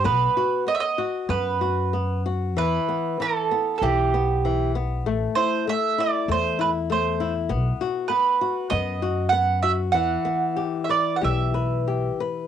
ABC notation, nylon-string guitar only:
X:1
M:4/4
L:1/8
Q:1/4=97
K:Em
V:1 name="Nylon-string guitar"
B, F B, F B, F B, F | E, B, E, B, E, B, E, B, | A, E A, E A, E A, E | B, F B, F B, F B, F |
E, B, G B G B G B |]